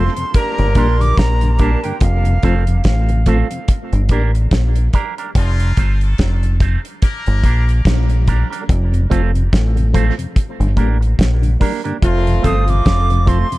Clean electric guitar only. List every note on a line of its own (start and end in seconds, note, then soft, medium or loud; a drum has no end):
0.00 0.12 A3 medium
0.00 0.13 C4 medium
0.00 0.13 F4 medium
0.00 0.13 A4 medium
0.76 0.96 A#3 medium
0.76 0.96 D4 medium
0.76 0.96 G4 medium
0.76 0.97 A#4 medium
1.01 muted clean electric guitar stroke soft
1.59 1.79 A#3 medium
1.59 1.79 D4 medium
1.59 1.80 G4 medium
1.59 1.80 A#4 medium
1.83 1.96 A#3 soft
1.83 1.96 D4 medium
1.83 1.95 G4 medium
1.83 1.95 A#4 medium
2.43 2.63 A3 loud
2.43 2.63 C4 medium
2.43 2.63 F4 loud
2.43 2.64 A4 loud
3.10 muted clean electric guitar stroke medium
3.27 3.46 A3 medium
3.27 3.47 C4 medium
3.27 3.47 F4 medium
3.27 3.47 A4 loud
4.10 4.30 A#3 medium
4.10 4.30 D4 medium
4.10 4.31 G4 medium
4.10 4.31 A#4 loud
4.35 muted clean electric guitar stroke soft
4.93 5.13 A#3 medium
4.93 5.13 D4 medium
4.93 5.14 G4 medium
4.93 5.14 A#4 loud
5.18 5.30 A#3 soft
5.18 5.30 D4 medium
5.18 5.30 G4 medium
5.18 5.29 A#4 medium
5.77 5.97 A3 medium
5.77 5.97 C4 medium
5.77 5.98 F4 medium
5.77 5.98 A4 medium
6.43 muted clean electric guitar stroke medium
6.60 6.80 A3 medium
6.60 6.80 C4 medium
6.60 6.80 F4 medium
6.60 6.80 A4 medium
7.44 7.63 A#3 medium
7.44 7.64 D4 medium
7.44 7.64 G4 medium
7.44 7.64 A#4 medium
8.27 8.47 A#3 medium
8.27 8.47 D4 medium
8.27 8.47 G4 medium
8.27 8.47 A#4 medium
8.50 8.63 A#3 medium
8.50 8.63 D4 medium
8.50 8.63 G4 medium
8.50 8.62 A#4 medium
9.10 9.30 A3 medium
9.10 9.30 C4 loud
9.10 9.31 F4 loud
9.10 9.31 A4 loud
9.76 muted clean electric guitar stroke medium
9.93 10.13 A3 medium
9.93 10.14 C4 medium
9.93 10.14 F4 medium
9.93 10.14 A4 loud
10.76 10.97 A#3 medium
10.76 10.97 D4 medium
10.76 10.97 G4 medium
10.76 10.97 A#4 medium
11.01 muted clean electric guitar stroke soft
11.60 11.80 A#3 medium
11.60 11.80 D4 medium
11.60 11.81 G4 medium
11.60 11.81 A#4 medium
11.84 11.97 A#3 medium
11.84 11.96 D4 medium
11.84 11.96 G4 medium
11.84 11.96 A#4 medium
12.42 12.63 A3 medium
12.42 12.63 C4 medium
12.42 12.64 F4 medium
12.42 12.64 A4 medium
13.10 muted clean electric guitar stroke medium
13.26 13.46 A3 medium
13.26 13.47 C4 medium
13.26 13.47 F4 medium
13.26 13.47 A4 medium